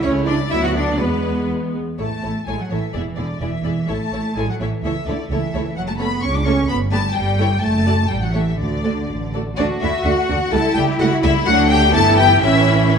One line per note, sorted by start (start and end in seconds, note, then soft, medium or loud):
0.03 0.47 C#2 medium
0.03 0.25 A3 medium
0.03 0.11 C#4 loud
0.03 0.48 E4 medium
0.03 0.27 C#5 loud
0.03 0.11 C#5 medium
0.26 0.36 G#3 medium
0.26 0.34 D4 medium
0.26 0.50 D5 medium
0.50 0.99 D2 medium
0.50 0.99 F#3 medium
0.50 0.99 B3 medium
0.50 0.63 E4 loud
0.50 0.62 E5 medium
0.50 0.63 E5 medium
0.62 0.69 F#4 medium
0.62 0.75 F#5 medium
0.62 0.68 F#5 medium
0.75 1.00 D4 medium
0.75 1.00 D5 medium
0.99 1.79 E2 medium
0.99 1.79 G#3 medium
0.99 1.50 B3 medium
0.99 1.78 B3 medium
0.99 1.50 B4 medium
1.98 2.07 A1 soft
1.98 2.44 A3 medium
1.98 2.08 A3 soft
1.98 2.08 E4 soft
1.98 2.06 A4 soft
1.98 2.06 C#5 soft
1.98 2.45 A5 medium
2.23 2.31 A1 soft
2.23 2.31 A3 soft
2.23 2.31 E4 soft
2.23 2.31 A4 soft
2.23 2.31 C#5 soft
2.46 2.56 A1 soft
2.46 2.59 G#3 soft
2.46 2.56 A3 soft
2.46 2.56 E4 soft
2.46 2.55 A4 soft
2.46 2.55 C#5 soft
2.46 2.59 G#5 medium
2.59 2.71 F#3 soft
2.59 2.72 F#5 soft
2.70 2.80 A1 soft
2.70 2.94 E3 soft
2.70 2.81 A3 soft
2.70 2.81 E4 soft
2.70 2.79 A4 soft
2.70 2.78 C#5 soft
2.70 2.92 E5 medium
2.93 3.03 E1 soft
2.93 3.18 E3 soft
2.93 3.04 B3 soft
2.93 3.05 E4 soft
2.93 3.01 G#4 soft
2.93 3.01 D5 soft
2.93 3.01 E5 medium
3.16 3.26 E1 soft
3.16 3.41 D3 soft
3.16 3.26 B3 soft
3.16 3.27 E4 soft
3.16 3.24 G#4 soft
3.16 3.24 D5 soft
3.16 3.41 D5 medium
3.41 3.49 E1 soft
3.41 3.88 E3 soft
3.41 3.50 B3 soft
3.41 3.50 E4 soft
3.41 3.49 G#4 soft
3.41 3.49 D5 soft
3.41 3.90 E5 medium
3.64 3.72 E1 soft
3.64 3.72 B3 soft
3.64 3.72 E4 soft
3.64 3.73 G#4 soft
3.64 3.72 D5 soft
3.88 3.96 A1 soft
3.88 3.96 A3 soft
3.88 4.36 A3 medium
3.88 3.97 E4 soft
3.88 3.96 A4 soft
3.88 3.96 C#5 soft
3.88 4.37 A5 medium
4.12 4.20 A1 soft
4.12 4.21 A3 soft
4.12 4.21 E4 soft
4.12 4.21 A4 soft
4.12 4.21 C#5 soft
4.36 4.44 A1 soft
4.36 4.48 G#3 medium
4.36 4.45 A3 soft
4.36 4.44 E4 soft
4.36 4.46 A4 soft
4.36 4.46 C#5 soft
4.36 4.48 G#5 medium
4.49 4.60 F#3 soft
4.49 4.54 F#5 medium
4.60 4.68 A1 soft
4.60 4.83 E3 medium
4.60 4.68 A3 soft
4.60 4.68 E4 soft
4.60 4.68 A4 soft
4.60 4.68 C#5 soft
4.60 4.69 E5 medium
4.83 4.91 C#2 medium
4.83 4.92 E3 medium
4.83 4.92 A3 medium
4.83 4.92 E4 soft
4.83 4.93 A4 medium
4.83 4.93 C#5 soft
4.83 5.07 E5 medium
5.07 5.15 C#2 medium
5.07 5.16 D3 medium
5.07 5.16 A3 soft
5.07 5.16 E4 soft
5.07 5.16 A4 soft
5.07 5.16 C#5 soft
5.07 5.31 D5 medium
5.30 5.38 C#2 medium
5.30 5.76 E3 medium
5.30 5.41 A3 soft
5.30 5.41 E4 soft
5.30 5.39 A4 soft
5.30 5.39 C#5 soft
5.30 5.75 E5 medium
5.53 5.62 C#2 medium
5.53 5.63 A3 medium
5.53 5.63 E4 soft
5.53 5.61 A4 soft
5.53 5.62 C#5 soft
5.76 6.15 F#1 medium
5.76 5.88 F#3 medium
5.76 5.81 F#5 loud
5.87 6.00 A3 medium
5.87 5.92 A5 medium
5.98 6.07 A3 medium
5.98 6.22 B3 medium
5.98 6.07 C#4 medium
5.98 6.06 A4 medium
5.98 6.06 C#5 medium
5.98 6.21 B5 medium
6.21 6.61 C#2 medium
6.21 6.34 C#4 medium
6.21 6.33 C#6 medium
6.34 6.45 D4 medium
6.34 6.46 D6 medium
6.45 6.53 A3 medium
6.45 6.68 C#4 medium
6.45 6.53 C#4 medium
6.45 6.54 A4 medium
6.45 6.53 C#5 medium
6.45 6.68 C#6 medium
6.68 7.08 G1 medium
6.68 6.77 B3 medium
6.68 6.76 B5 loud
6.92 7.00 A3 medium
6.92 7.00 B3 medium
6.92 7.00 D4 medium
6.92 6.99 G4 medium
6.92 7.00 B4 medium
6.92 7.15 A5 loud
7.14 7.54 G1 medium
7.14 7.61 G3 medium
7.14 7.61 G5 loud
7.39 7.46 A3 medium
7.39 7.47 E4 medium
7.39 7.47 A4 medium
7.39 7.47 C#5 medium
7.61 8.02 F#1 medium
7.61 8.09 A3 medium
7.61 8.09 A5 loud
7.86 7.93 A3 medium
7.86 7.94 F#4 medium
7.86 7.94 A4 medium
7.86 7.94 D5 medium
8.08 8.51 A1 medium
8.08 8.15 G3 medium
8.08 8.21 G5 medium
8.21 8.34 F#3 medium
8.21 8.34 F#5 medium
8.34 8.58 E3 medium
8.34 8.42 A3 soft
8.34 8.42 G4 soft
8.34 8.42 A4 medium
8.34 8.42 C#5 medium
8.34 8.59 E5 medium
8.58 9.00 D2 medium
8.58 9.32 D3 medium
8.58 9.32 D5 medium
8.84 8.92 A3 soft
8.84 8.92 F#4 medium
8.84 8.92 A4 soft
8.84 8.92 D5 soft
9.09 9.50 A1 medium
9.33 9.43 A3 soft
9.33 9.42 F#4 soft
9.33 9.41 A4 soft
9.33 9.41 D5 soft
9.57 9.66 D2 medium
9.57 9.66 A3 medium
9.57 9.66 D4 medium
9.57 9.67 D4 medium
9.57 10.48 F#4 medium
9.57 9.65 D5 loud
9.81 9.89 D2 medium
9.81 9.89 A3 medium
9.81 9.89 D4 medium
9.81 9.91 E4 medium
9.81 10.05 E5 loud
10.05 10.13 D2 medium
10.05 10.13 A3 medium
10.05 10.13 D4 medium
10.05 10.51 F#4 medium
10.05 10.52 F#5 medium
10.29 10.37 D2 medium
10.29 10.37 A3 medium
10.29 10.37 D4 medium
10.51 10.60 C#2 medium
10.51 10.60 G3 medium
10.51 10.59 A3 medium
10.51 11.46 E4 medium
10.51 10.76 A4 loud
10.51 10.76 A5 loud
10.74 10.84 C#2 medium
10.74 10.84 G3 medium
10.74 10.83 A3 medium
10.74 11.00 G4 medium
10.74 10.82 G5 loud
10.98 11.08 C#2 medium
10.98 11.07 G3 medium
10.98 11.07 A3 medium
10.98 11.22 F#4 loud
10.98 11.08 F#5 loud
11.21 11.31 C#2 medium
11.21 11.31 G3 medium
11.21 11.31 A3 medium
11.21 11.45 E4 loud
11.21 11.32 E5 loud
11.45 11.91 D2 medium
11.45 11.90 F#3 medium
11.45 11.90 A3 medium
11.45 11.93 D4 medium
11.45 11.70 F#4 loud
11.45 11.69 F#5 loud
11.70 11.94 G4 loud
11.70 11.94 G5 loud
11.93 12.43 G1 medium
11.93 12.40 E3 medium
11.93 12.42 B3 medium
11.93 12.41 E4 loud
11.93 12.18 A4 loud
11.93 12.18 A5 loud
12.17 12.43 G4 loud
12.17 12.42 G5 loud
12.41 12.99 A1 medium
12.41 12.99 E3 medium
12.41 12.99 C#4 medium
12.41 12.93 E4 medium
12.41 12.90 E5 loud